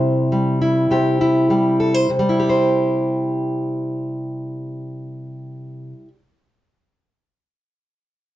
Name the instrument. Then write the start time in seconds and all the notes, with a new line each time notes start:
steel-string acoustic guitar
Already playing: C3 G3 E4 G4 C5
0.32 G3
0.62 E4
0.91 C3 G4
1.21 E4
1.50 G3 G4
1.80 A4
1.94 C5
2.10 C3
2.19 G3
2.29 E4
2.40 G4
2.49 C5